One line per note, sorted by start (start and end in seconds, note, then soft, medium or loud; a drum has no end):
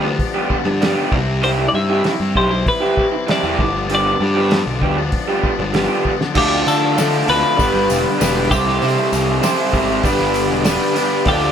0.00 0.16 D2 medium
0.00 0.50 B3 medium
0.00 0.49 D4 medium
0.00 1.09 G4 medium
0.05 0.48 F3 medium
0.05 muted overdriven electric guitar stroke soft
0.19 kick loud
0.19 open hi-hat medium
0.35 0.56 F3 medium
0.35 0.55 G3 medium
0.35 0.55 B3 loud
0.35 0.55 G4 loud
0.49 0.79 D3 medium
0.49 0.79 F3 medium
0.49 0.81 B3 medium
0.49 0.81 D4 medium
0.49 kick medium
0.65 0.93 G2 loud
0.65 muted overdriven electric guitar stroke medium
0.80 1.10 G2 medium
0.80 1.10 D3 medium
0.80 0.96 F3 medium
0.80 0.96 G3 medium
0.80 0.96 B3 medium
0.80 0.94 D4 medium
0.80 0.95 G4 medium
0.80 snare loud
0.80 open hi-hat medium
0.95 1.10 F3 soft
0.95 1.13 F3 medium
0.95 1.13 G3 medium
0.95 1.11 B3 medium
0.95 1.12 B3 medium
0.95 1.10 D4 medium
0.95 1.12 G4 loud
1.10 1.67 C2 medium
1.10 1.40 C3 medium
1.10 1.28 G3 medium
1.10 1.27 C4 loud
1.10 1.25 E4 loud
1.10 kick loud
1.27 1.42 G3 medium
1.27 1.41 C4 medium
1.27 1.42 E4 medium
1.41 1.71 C3 medium
1.41 1.63 E3 medium
1.41 1.73 G3 medium
1.41 1.63 G3 loud
1.41 1.72 C4 medium
1.41 1.63 E4 loud
1.41 1.73 E4 medium
1.41 1.63 G4 medium
1.41 1.50 C5 medium
1.41 open hi-hat medium
1.69 2.02 C3 medium
1.69 1.75 D5 medium
1.73 2.01 G2 medium
1.73 2.03 G3 medium
1.73 2.03 C4 medium
1.73 2.04 E4 medium
1.73 2.37 E5 loud
1.73 muted overdriven electric guitar stroke soft
1.89 2.10 E3 medium
1.89 2.10 G3 medium
1.89 2.10 E4 medium
1.89 2.09 G4 medium
2.04 2.34 C3 medium
2.04 2.21 G3 medium
2.04 2.20 C4 loud
2.04 2.19 E4 loud
2.04 snare medium
2.04 open hi-hat soft
2.20 2.34 G2 medium
2.20 2.36 G3 medium
2.20 2.35 C4 medium
2.20 2.35 E4 medium
2.35 2.63 B1 loud
2.35 2.49 E3 medium
2.35 2.49 G3 medium
2.35 2.49 E4 medium
2.35 2.48 G4 medium
2.35 2.68 C5 medium
2.35 muted overdriven electric guitar stroke soft
2.35 kick medium
2.49 2.97 G3 medium
2.49 2.97 C4 medium
2.49 2.98 E4 medium
2.49 muted overdriven electric guitar stroke soft
2.66 3.31 B4 medium
2.66 kick loud
2.66 open hi-hat medium
2.81 3.02 E3 medium
2.81 3.02 G3 medium
2.81 3.01 E4 medium
2.81 3.01 G4 loud
2.97 3.26 C3 medium
2.97 3.27 G3 medium
2.97 3.27 C4 medium
2.97 3.29 E4 medium
2.97 kick medium
3.12 muted overdriven electric guitar stroke medium
3.27 3.57 C3 medium
3.27 3.42 E3 medium
3.27 3.42 G3 medium
3.27 3.44 G3 medium
3.27 3.44 C4 loud
3.27 3.41 E4 medium
3.27 3.42 E4 loud
3.27 3.41 G4 medium
3.27 snare loud
3.27 open hi-hat medium
3.31 3.93 D5 medium
3.43 3.57 E2 medium
3.43 3.59 E3 medium
3.43 3.59 G3 medium
3.43 3.58 G3 medium
3.43 3.58 C4 medium
3.43 3.58 E4 medium
3.43 3.57 E4 medium
3.43 3.58 G4 loud
3.58 4.14 G1 medium
3.58 3.88 G2 medium
3.58 3.89 D3 loud
3.58 3.75 F3 medium
3.58 3.74 B3 loud
3.58 3.73 D4 medium
3.58 kick loud
3.75 3.89 F3 medium
3.75 3.90 B3 medium
3.75 3.90 D4 medium
3.89 4.49 G2 medium
3.89 4.19 D3 medium
3.89 4.10 F3 loud
3.89 4.20 F3 loud
3.89 4.10 G3 medium
3.89 4.10 B3 loud
3.89 4.20 B3 medium
3.89 4.21 D4 medium
3.89 4.10 G4 loud
3.89 open hi-hat medium
3.95 5.73 D5 medium
4.20 4.61 G2 loud
4.20 4.50 D3 medium
4.20 4.51 F3 medium
4.20 4.51 B3 medium
4.20 4.51 D4 medium
4.20 muted overdriven electric guitar stroke soft
4.35 4.56 F3 medium
4.35 4.56 G3 medium
4.35 4.56 B3 medium
4.35 4.56 G4 loud
4.51 4.97 G2 medium
4.51 4.82 D3 loud
4.51 4.68 F3 loud
4.51 4.67 B3 loud
4.51 4.66 D4 loud
4.51 snare loud
4.51 open hi-hat medium
4.66 4.82 B1 medium
4.66 4.82 F3 medium
4.66 4.82 B3 medium
4.66 4.82 D4 medium
4.82 5.10 D2 medium
4.82 4.97 F3 medium
4.82 4.97 G3 medium
4.82 4.97 B3 medium
4.82 4.96 G4 loud
4.82 muted overdriven electric guitar stroke soft
4.82 kick medium
4.97 5.43 F3 medium
4.97 5.43 B3 medium
4.97 5.43 D4 medium
4.97 muted overdriven electric guitar stroke soft
5.12 kick loud
5.12 open hi-hat medium
5.28 5.48 F3 medium
5.28 5.48 G3 loud
5.28 5.48 B3 medium
5.28 5.48 G4 loud
5.43 5.73 D3 medium
5.43 5.73 F3 medium
5.43 5.74 B3 medium
5.43 5.74 D4 medium
5.43 kick medium
5.59 5.86 G1 loud
5.59 muted overdriven electric guitar stroke medium
5.73 6.20 G2 medium
5.73 6.04 D3 medium
5.73 5.88 F3 medium
5.73 5.90 F3 medium
5.73 5.88 G3 medium
5.73 5.88 B3 medium
5.73 5.89 B3 medium
5.73 5.88 D4 loud
5.73 5.87 G4 medium
5.73 snare loud
5.73 open hi-hat medium
5.88 6.10 F3 medium
5.88 6.04 F3 soft
5.88 6.10 G3 medium
5.88 6.09 B3 medium
5.88 6.05 B3 medium
5.88 6.05 D4 medium
5.88 6.09 G4 loud
6.05 6.33 D3 medium
6.05 6.20 F3 medium
6.05 6.19 B3 medium
6.05 6.18 D4 medium
6.05 kick medium
6.19 6.34 F3 soft
6.19 6.34 B3 medium
6.19 6.33 D4 medium
6.19 snare medium
6.34 6.63 D2 loud
6.34 6.95 D3 loud
6.34 6.95 D3 medium
6.34 6.96 F3 medium
6.34 6.96 A3 loud
6.34 6.95 D4 medium
6.34 6.97 D4 loud
6.34 6.96 F4 loud
6.34 6.65 G4 medium
6.34 6.96 A4 loud
6.34 7.59 A4 medium
6.34 8.50 D5 medium
6.34 8.50 D6 medium
6.34 kick loud
6.34 crash loud
6.34 tambourine soft
6.39 7.59 F5 medium
6.66 7.21 D3 medium
6.66 7.29 A4 medium
6.66 open hi-hat medium
6.66 tambourine medium
6.96 7.25 D3 medium
6.96 7.26 D3 medium
6.96 7.26 F3 medium
6.96 7.26 A3 loud
6.96 7.25 D4 medium
6.96 7.27 D4 medium
6.96 7.26 F4 medium
6.96 7.26 A4 loud
6.96 snare loud
6.96 open hi-hat medium
6.96 tambourine loud
7.26 7.42 D2 loud
7.26 7.56 D3 medium
7.26 7.57 D3 medium
7.26 7.57 F3 medium
7.26 7.57 A3 loud
7.26 7.56 D4 loud
7.26 7.57 D4 medium
7.26 7.56 F4 loud
7.26 7.57 A4 loud
7.26 8.17 B4 loud
7.26 open hi-hat medium
7.26 tambourine soft
7.57 7.73 G1 medium
7.57 8.19 G2 loud
7.57 8.19 D3 medium
7.57 8.17 G3 loud
7.57 8.19 G3 medium
7.57 8.18 B3 loud
7.57 8.20 B3 loud
7.57 8.17 D4 loud
7.57 8.20 D4 medium
7.57 8.18 B4 loud
7.57 kick loud
7.57 open hi-hat medium
7.57 tambourine medium
7.61 8.52 B4 medium
7.61 11.25 G5 medium
7.74 7.88 G1 medium
7.90 8.04 E1 medium
7.90 open hi-hat medium
7.90 tambourine medium
8.18 8.48 E1 loud
8.18 8.49 G2 medium
8.18 8.49 D3 medium
8.18 8.48 G3 medium
8.18 8.49 G3 medium
8.18 8.48 B3 medium
8.18 8.49 B3 medium
8.18 8.48 D4 medium
8.18 8.50 D4 medium
8.18 8.49 B4 loud
8.18 snare loud
8.18 open hi-hat medium
8.18 tambourine medium
8.49 8.78 C2 medium
8.49 8.79 C3 loud
8.49 8.80 C3 loud
8.49 8.79 E3 loud
8.49 8.80 G3 medium
8.49 8.80 C4 loud
8.49 8.81 C4 medium
8.49 8.80 E4 loud
8.49 8.81 E4 loud
8.49 10.31 G4 loud
8.49 10.04 A4 medium
8.49 8.80 C5 loud
8.49 10.03 E5 medium
8.49 10.03 C6 medium
8.49 kick loud
8.49 open hi-hat medium
8.49 tambourine medium
8.68 snare soft
8.80 9.40 C3 loud
8.80 9.40 C3 medium
8.80 8.96 C3 loud
8.80 9.40 E3 loud
8.80 9.40 G3 loud
8.80 9.41 G3 loud
8.80 9.40 C4 loud
8.80 9.41 C4 loud
8.80 9.41 E4 loud
8.80 9.41 C5 loud
8.80 open hi-hat medium
8.80 tambourine soft
9.12 9.40 C2 medium
9.12 open hi-hat medium
9.12 tambourine medium
9.41 9.71 C3 medium
9.41 9.72 C3 medium
9.41 9.72 E3 medium
9.41 9.72 G3 medium
9.41 9.72 C4 medium
9.41 9.73 C4 medium
9.41 9.72 E4 medium
9.41 9.73 E4 loud
9.41 9.73 C5 loud
9.41 snare loud
9.41 open hi-hat medium
9.41 tambourine loud
9.72 10.01 G#1 loud
9.72 10.02 C3 medium
9.72 10.02 E3 medium
9.72 10.02 G3 medium
9.72 10.02 C4 medium
9.72 10.03 C4 medium
9.72 10.02 E4 medium
9.72 10.03 E4 medium
9.72 10.03 C5 medium
9.72 kick medium
9.72 open hi-hat medium
9.72 tambourine soft
10.03 10.18 G1 loud
10.03 10.63 G2 medium
10.03 10.64 D3 medium
10.03 10.62 G3 loud
10.03 10.65 G3 medium
10.03 10.63 B3 loud
10.03 10.65 B3 medium
10.03 10.62 D4 loud
10.03 10.65 D4 medium
10.03 10.63 B4 loud
10.03 11.26 B4 medium
10.03 11.52 D5 medium
10.03 11.52 D6 medium
10.03 kick loud
10.03 open hi-hat medium
10.03 tambourine medium
10.20 10.50 G1 medium
10.34 open hi-hat medium
10.34 tambourine medium
10.50 10.78 E1 medium
10.63 10.95 G2 medium
10.63 10.95 D3 medium
10.63 10.94 G3 medium
10.63 10.96 G3 medium
10.63 10.94 B3 medium
10.63 10.96 B3 medium
10.63 10.94 D4 medium
10.63 10.97 D4 medium
10.63 10.95 B4 medium
10.63 snare loud
10.63 open hi-hat medium
10.63 tambourine medium
10.95 11.25 G2 medium
10.95 11.25 D3 medium
10.95 11.24 G3 medium
10.95 11.26 G3 medium
10.95 11.25 B3 medium
10.95 11.26 B3 medium
10.95 11.25 D4 medium
10.95 11.26 D4 loud
10.95 11.25 B4 medium
10.95 open hi-hat medium
10.95 tambourine medium
11.25 11.52 D2 loud
11.25 11.52 D3 loud
11.25 11.52 D3 medium
11.25 11.52 F3 loud
11.25 11.52 A3 medium
11.25 11.52 D4 loud
11.25 11.52 F4 loud
11.25 11.52 G4 medium
11.25 11.52 A4 loud
11.25 11.52 A4 medium
11.25 11.52 F5 medium
11.25 kick loud
11.25 open hi-hat medium
11.25 tambourine soft